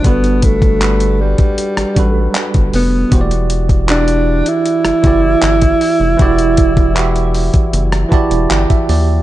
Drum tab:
HH |xxxxxx-xxxx-xxo-|xxxxxx-xxxx-xxo-|xxxxxxoxxxxxxxo-|
CP |----x-------x---|----x-------x---|----x-------x---|
SD |---------r------|---------r------|---------r------|
BD |o-oo---o--o--o--|o--o------o--o--|o-oo---o--o--o--|